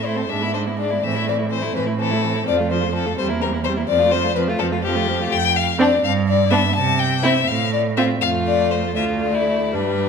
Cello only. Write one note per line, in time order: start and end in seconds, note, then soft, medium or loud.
0.00 0.20 A2 medium
0.29 0.94 G#2 medium
1.02 1.66 A2 medium
1.75 2.38 A2 medium
2.47 3.10 F2 medium
3.19 3.81 E2 medium
3.88 4.51 F2 medium
4.60 5.23 F2 medium
5.32 5.92 F2 medium
6.03 6.63 G2 medium
6.76 7.36 C3 medium
7.48 8.09 A2 medium
8.22 8.98 F2 medium
8.96 9.75 D2 medium
9.73 10.09 G2 medium